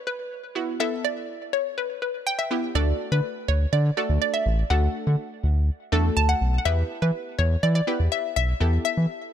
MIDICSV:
0, 0, Header, 1, 4, 480
1, 0, Start_track
1, 0, Key_signature, 2, "major"
1, 0, Tempo, 487805
1, 788, Time_signature, 4, 2, 24, 8
1, 9181, End_track
2, 0, Start_track
2, 0, Title_t, "Synth pluck"
2, 0, Program_c, 0, 84
2, 68, Note_on_c, 0, 71, 98
2, 789, Note_on_c, 0, 76, 105
2, 810, Note_off_c, 0, 71, 0
2, 1028, Note_on_c, 0, 74, 99
2, 1036, Note_off_c, 0, 76, 0
2, 1507, Note_on_c, 0, 73, 92
2, 1523, Note_off_c, 0, 74, 0
2, 1748, Note_on_c, 0, 71, 92
2, 1755, Note_off_c, 0, 73, 0
2, 1976, Note_off_c, 0, 71, 0
2, 1988, Note_on_c, 0, 71, 83
2, 2229, Note_on_c, 0, 79, 115
2, 2348, Note_on_c, 0, 76, 105
2, 2353, Note_off_c, 0, 79, 0
2, 2669, Note_off_c, 0, 71, 0
2, 2709, Note_on_c, 0, 74, 110
2, 2719, Note_off_c, 0, 76, 0
2, 3069, Note_on_c, 0, 71, 89
2, 3080, Note_off_c, 0, 74, 0
2, 3428, Note_on_c, 0, 73, 92
2, 3440, Note_off_c, 0, 71, 0
2, 3536, Note_off_c, 0, 73, 0
2, 3667, Note_on_c, 0, 74, 94
2, 3891, Note_off_c, 0, 74, 0
2, 3908, Note_on_c, 0, 74, 90
2, 4137, Note_off_c, 0, 74, 0
2, 4148, Note_on_c, 0, 74, 98
2, 4267, Note_on_c, 0, 76, 99
2, 4272, Note_off_c, 0, 74, 0
2, 4626, Note_on_c, 0, 78, 94
2, 4638, Note_off_c, 0, 76, 0
2, 5074, Note_off_c, 0, 78, 0
2, 6067, Note_on_c, 0, 81, 108
2, 6188, Note_on_c, 0, 78, 106
2, 6192, Note_off_c, 0, 81, 0
2, 6466, Note_off_c, 0, 78, 0
2, 6478, Note_on_c, 0, 78, 79
2, 6547, Note_on_c, 0, 76, 116
2, 6548, Note_off_c, 0, 78, 0
2, 6908, Note_on_c, 0, 71, 102
2, 6919, Note_off_c, 0, 76, 0
2, 7243, Note_off_c, 0, 71, 0
2, 7267, Note_on_c, 0, 73, 100
2, 7508, Note_on_c, 0, 74, 99
2, 7515, Note_off_c, 0, 73, 0
2, 7616, Note_off_c, 0, 74, 0
2, 7628, Note_on_c, 0, 74, 100
2, 7988, Note_on_c, 0, 76, 102
2, 7999, Note_off_c, 0, 74, 0
2, 8096, Note_off_c, 0, 76, 0
2, 8229, Note_on_c, 0, 76, 102
2, 8696, Note_off_c, 0, 76, 0
2, 8707, Note_on_c, 0, 76, 101
2, 9181, Note_off_c, 0, 76, 0
2, 9181, End_track
3, 0, Start_track
3, 0, Title_t, "Synth pluck"
3, 0, Program_c, 1, 84
3, 544, Note_on_c, 1, 59, 81
3, 547, Note_on_c, 1, 64, 71
3, 549, Note_on_c, 1, 66, 86
3, 740, Note_off_c, 1, 59, 0
3, 742, Note_off_c, 1, 64, 0
3, 743, Note_off_c, 1, 66, 0
3, 785, Note_on_c, 1, 59, 77
3, 788, Note_on_c, 1, 64, 73
3, 790, Note_on_c, 1, 69, 90
3, 1565, Note_off_c, 1, 59, 0
3, 1566, Note_off_c, 1, 64, 0
3, 1567, Note_off_c, 1, 69, 0
3, 2467, Note_on_c, 1, 59, 82
3, 2469, Note_on_c, 1, 64, 72
3, 2472, Note_on_c, 1, 67, 88
3, 2662, Note_off_c, 1, 59, 0
3, 2663, Note_off_c, 1, 64, 0
3, 2665, Note_off_c, 1, 67, 0
3, 2707, Note_on_c, 1, 57, 80
3, 2708, Note_on_c, 1, 62, 76
3, 2710, Note_on_c, 1, 66, 73
3, 2711, Note_on_c, 1, 69, 87
3, 3485, Note_off_c, 1, 57, 0
3, 3486, Note_off_c, 1, 62, 0
3, 3487, Note_off_c, 1, 66, 0
3, 3488, Note_off_c, 1, 69, 0
3, 3906, Note_on_c, 1, 57, 80
3, 3907, Note_on_c, 1, 62, 73
3, 3909, Note_on_c, 1, 66, 72
3, 3911, Note_on_c, 1, 69, 89
3, 4490, Note_off_c, 1, 57, 0
3, 4491, Note_off_c, 1, 62, 0
3, 4492, Note_off_c, 1, 66, 0
3, 4493, Note_off_c, 1, 69, 0
3, 4625, Note_on_c, 1, 57, 80
3, 4627, Note_on_c, 1, 62, 75
3, 4629, Note_on_c, 1, 66, 73
3, 4630, Note_on_c, 1, 69, 88
3, 5405, Note_off_c, 1, 57, 0
3, 5406, Note_off_c, 1, 62, 0
3, 5406, Note_off_c, 1, 66, 0
3, 5407, Note_off_c, 1, 69, 0
3, 5825, Note_on_c, 1, 57, 96
3, 5828, Note_on_c, 1, 62, 84
3, 5830, Note_on_c, 1, 66, 87
3, 5830, Note_on_c, 1, 69, 107
3, 6410, Note_off_c, 1, 57, 0
3, 6411, Note_off_c, 1, 62, 0
3, 6412, Note_off_c, 1, 66, 0
3, 6413, Note_off_c, 1, 69, 0
3, 6546, Note_on_c, 1, 59, 82
3, 6548, Note_on_c, 1, 64, 75
3, 6550, Note_on_c, 1, 67, 73
3, 6551, Note_on_c, 1, 71, 92
3, 7325, Note_off_c, 1, 59, 0
3, 7326, Note_off_c, 1, 64, 0
3, 7327, Note_off_c, 1, 67, 0
3, 7328, Note_off_c, 1, 71, 0
3, 7746, Note_on_c, 1, 59, 80
3, 7746, Note_on_c, 1, 64, 74
3, 7749, Note_on_c, 1, 67, 73
3, 7750, Note_on_c, 1, 71, 89
3, 8330, Note_off_c, 1, 59, 0
3, 8331, Note_off_c, 1, 64, 0
3, 8332, Note_off_c, 1, 67, 0
3, 8333, Note_off_c, 1, 71, 0
3, 8465, Note_on_c, 1, 59, 80
3, 8467, Note_on_c, 1, 64, 74
3, 8468, Note_on_c, 1, 67, 74
3, 8470, Note_on_c, 1, 69, 87
3, 9181, Note_off_c, 1, 59, 0
3, 9181, Note_off_c, 1, 64, 0
3, 9181, Note_off_c, 1, 67, 0
3, 9181, Note_off_c, 1, 69, 0
3, 9181, End_track
4, 0, Start_track
4, 0, Title_t, "Analog synth bass"
4, 0, Program_c, 2, 38
4, 2707, Note_on_c, 2, 38, 111
4, 2883, Note_off_c, 2, 38, 0
4, 3067, Note_on_c, 2, 50, 108
4, 3156, Note_off_c, 2, 50, 0
4, 3428, Note_on_c, 2, 38, 97
4, 3604, Note_off_c, 2, 38, 0
4, 3667, Note_on_c, 2, 50, 116
4, 3843, Note_off_c, 2, 50, 0
4, 4028, Note_on_c, 2, 38, 98
4, 4116, Note_off_c, 2, 38, 0
4, 4387, Note_on_c, 2, 33, 94
4, 4563, Note_off_c, 2, 33, 0
4, 4628, Note_on_c, 2, 38, 112
4, 4804, Note_off_c, 2, 38, 0
4, 4988, Note_on_c, 2, 50, 102
4, 5076, Note_off_c, 2, 50, 0
4, 5348, Note_on_c, 2, 38, 98
4, 5612, Note_off_c, 2, 38, 0
4, 5829, Note_on_c, 2, 40, 97
4, 6004, Note_off_c, 2, 40, 0
4, 6068, Note_on_c, 2, 38, 98
4, 6244, Note_off_c, 2, 38, 0
4, 6309, Note_on_c, 2, 35, 88
4, 6484, Note_off_c, 2, 35, 0
4, 6549, Note_on_c, 2, 40, 110
4, 6724, Note_off_c, 2, 40, 0
4, 6909, Note_on_c, 2, 52, 103
4, 6997, Note_off_c, 2, 52, 0
4, 7269, Note_on_c, 2, 40, 103
4, 7444, Note_off_c, 2, 40, 0
4, 7509, Note_on_c, 2, 52, 106
4, 7685, Note_off_c, 2, 52, 0
4, 7869, Note_on_c, 2, 40, 92
4, 7957, Note_off_c, 2, 40, 0
4, 8230, Note_on_c, 2, 35, 93
4, 8405, Note_off_c, 2, 35, 0
4, 8469, Note_on_c, 2, 40, 115
4, 8645, Note_off_c, 2, 40, 0
4, 8830, Note_on_c, 2, 52, 100
4, 8917, Note_off_c, 2, 52, 0
4, 9181, End_track
0, 0, End_of_file